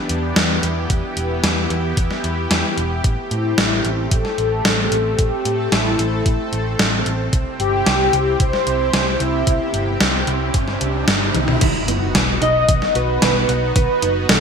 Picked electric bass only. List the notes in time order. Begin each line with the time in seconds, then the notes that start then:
0.10 E2
0.36 E2
0.63 E2
0.90 E2
1.17 E1
1.43 E2
1.70 E2
1.97 E2
2.24 E2
2.51 E2
2.77 E1
3.04 A1
3.31 A2
3.58 A1
3.85 A1
4.11 A1
4.38 A1
4.65 A1
4.92 A1
5.19 A1
5.45 A2
5.72 A1
5.99 A1
6.26 A1
6.53 A1
6.79 A1
7.06 A1
7.33 C2
7.60 G1
7.86 C2
8.13 C2
8.40 C2
8.67 C2
8.94 C2
9.20 C2
9.47 C2
9.74 G1
10.01 C2
10.27 C2
10.54 G1
10.81 C2
11.08 G1
11.35 C2
11.61 B1
11.88 F#1
12.15 B1
12.42 B1
12.69 B1
12.95 B1
13.22 B1
13.49 B1
13.76 B1
14.03 F#1
14.29 B1